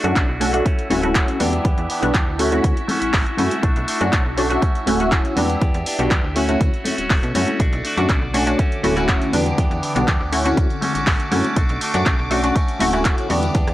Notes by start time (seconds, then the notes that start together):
Already playing: E4 E5
0.03 F#2 A3 C#4 D4 F#4, closed hi-hat, tambourine
0.15 B1 A3 D4 F#4, kick, clap, closed hi-hat
0.28 B1 D4 F#4, tambourine
0.40 A3 C#4 D4 F#4, open hi-hat
0.53 A3 C#4 D4 F#4, closed hi-hat, tambourine
0.65 A3 C#4 F#4, kick, closed hi-hat, tambourine
0.79 closed hi-hat, tambourine
0.90 D1 A3 C#4 E4 F#4, open hi-hat, high conga, low conga
1.02 A3 C#4 E4 F#4, closed hi-hat, tambourine
1.15 A3 C#4 F#4, kick, clap, closed hi-hat
1.27 C#4 F#4, closed hi-hat, tambourine
1.39 E2 E3 G3 B3 D4 F#4 G4, open hi-hat, high conga, low conga
1.52 closed hi-hat, tambourine
1.64 E2 E3 B3 D4 G4, kick, closed hi-hat, tambourine
1.78 E2, closed hi-hat, tambourine
1.89 E3 B3 D4 G4, open hi-hat
2.02 B1 G3 B3 D4 F#4 G4, closed hi-hat, tambourine
2.13 E2 E3 B3 D4 G4, kick, clap, closed hi-hat, tambourine
2.26 D2 B3 D4 G4, tambourine
2.38 A3 C#4 E4 F#4, open hi-hat
2.51 A3 C#4 E4 F#4, closed hi-hat, tambourine, high conga
2.63 D2, kick, closed hi-hat, tambourine
2.77 closed hi-hat, tambourine
2.88 A3 C#4 F#4, open hi-hat, high conga, low conga
3.01 A1 C#4 F#4, closed hi-hat, tambourine
3.13 A1 A3 C#4 F#4, kick, clap, open hi-hat, tambourine
3.26 C#4 F#4, closed hi-hat, tambourine
3.37 F#2 A3 C#4 E4 F#4, open hi-hat, high conga, low conga
3.51 closed hi-hat, tambourine
3.63 B1 A3 D4 F#4, kick, closed hi-hat
3.76 B1, closed hi-hat, tambourine
3.87 A3 D4 F#4, open hi-hat
4.00 F#2 A3 C#4 D4 F#4, closed hi-hat, tambourine
4.12 B1 A3 D4 F#4, kick, clap, closed hi-hat
4.25 B1 D4 F#4, tambourine
4.36 A3 C#4 D4 F#4, open hi-hat
4.49 A3 C#4 D4 F#4, closed hi-hat, tambourine
4.61 A3 C#4 F#4, kick, closed hi-hat
4.75 closed hi-hat, tambourine
4.86 D1 A3 C#4 E4 F#4, open hi-hat, high conga, low conga
4.99 A3 C#4 E4 F#4, closed hi-hat, tambourine
5.11 A3 C#4, kick, clap, closed hi-hat
5.24 C#4 F#4, closed hi-hat, tambourine
5.36 E2 G3 B3 D4 F#4 G4, open hi-hat, high conga, low conga
5.49 closed hi-hat, tambourine
5.61 E2 B3 D4 G4, kick, closed hi-hat, tambourine
5.74 E2, closed hi-hat, tambourine
5.85 B3 D4 G4, open hi-hat
5.98 B1 G3 B3 D4 F#4 G4, closed hi-hat, tambourine
6.10 E2 B3 D4 G4, kick, clap, closed hi-hat
6.23 D2 D4 G4, tambourine
6.35 A3 C#4 E4 F#4, open hi-hat
6.48 A3 C#4 E4 F#4, closed hi-hat, tambourine, high conga
6.60 D2, kick, closed hi-hat, tambourine
6.73 closed hi-hat, tambourine
6.84 A3 C#4 F#4, open hi-hat, high conga, low conga
6.97 D1 C#4 F#4, closed hi-hat, tambourine
7.09 D1 A3 F#4, kick, clap, open hi-hat, tambourine
7.23 B2, closed hi-hat, tambourine
7.34 F#2 A3 C#4 E4 F#4, open hi-hat, high conga, low conga
7.48 closed hi-hat, tambourine
7.59 B1 D3 A3 D4 F#4 D6, kick, closed hi-hat, tambourine
7.73 B1, closed hi-hat, tambourine
7.84 A3 D4 F#4, open hi-hat
7.97 F#2 A3 C#4 D4 F#4, closed hi-hat, tambourine
8.09 B1 A3 D4 F#4, kick, clap, closed hi-hat
8.21 B1 D4 F#4, tambourine
8.33 A3 C#4 D4 F#4, open hi-hat
8.46 A3 C#4 D4 F#4, closed hi-hat, tambourine
8.58 A3 C#4 F#4, kick, closed hi-hat, tambourine
8.72 closed hi-hat, tambourine
8.83 D1 A3 C#4 E4 F#4, open hi-hat, high conga, low conga
8.96 A3 C#4 E4 F#4, closed hi-hat, tambourine
9.08 A3 C#4 F#4, kick, clap, closed hi-hat, tambourine
9.22 closed hi-hat, tambourine
9.32 E2 E3 G3 B3 D4 F#4 G4, open hi-hat, high conga, low conga
9.46 closed hi-hat, tambourine
9.58 E2 E3 B3 D4 G4, kick, closed hi-hat, tambourine
9.71 E2, closed hi-hat, tambourine
9.82 E3 B3 D4 G4, open hi-hat
9.95 B1 G3 B3 D4 F#4 G4, closed hi-hat, tambourine
10.07 E2 E3 B3 D4 G4, kick, clap, closed hi-hat, tambourine
10.20 D2 B3 D4 G4, tambourine
10.32 A3 C#4 E4 F#4, open hi-hat
10.45 A3 C#4 E4 F#4, closed hi-hat, tambourine, high conga
10.57 D2, kick, closed hi-hat
10.69 closed hi-hat, tambourine
10.81 A3 C#4 F#4, open hi-hat, high conga, low conga
10.94 A1 C#4 F#4, closed hi-hat, tambourine
11.06 A1 A3 C#4 F#4, kick, clap, open hi-hat, tambourine
11.20 closed hi-hat, tambourine
11.31 F#2 A3 C#4 E4 F#4, open hi-hat, high conga, low conga
11.44 closed hi-hat, tambourine
11.56 B1 A3 D4 F#4, kick, closed hi-hat, tambourine
11.69 B1, closed hi-hat, tambourine
11.81 A3 D4 F#4, open hi-hat
11.93 F#2 A3 C#4 D4 F#4, closed hi-hat, tambourine
12.06 B1 A3 D4 F#4, kick, clap, closed hi-hat
12.18 B1 D4 F#4, tambourine
12.30 A3 C#4 D4 F#4, open hi-hat
12.43 A3 C#4 D4 F#4, closed hi-hat, tambourine
12.55 A3 C#4 F#4, kick, closed hi-hat, tambourine
12.68 closed hi-hat, tambourine
12.79 D1 A3 C#4 E4 F#4, open hi-hat, high conga, low conga
12.92 A3 C#4 E4 F#4, closed hi-hat, tambourine
13.04 A3 C#4 F#4, kick, clap, closed hi-hat
13.17 C#4 F#4, closed hi-hat, tambourine
13.29 E2 E3 G3 B3 D4 F#4 G4, open hi-hat, high conga, low conga
13.42 closed hi-hat, tambourine
13.54 E2 E3 B3 D4 G4, kick, closed hi-hat, tambourine
13.67 E2, cross-stick, closed hi-hat, tambourine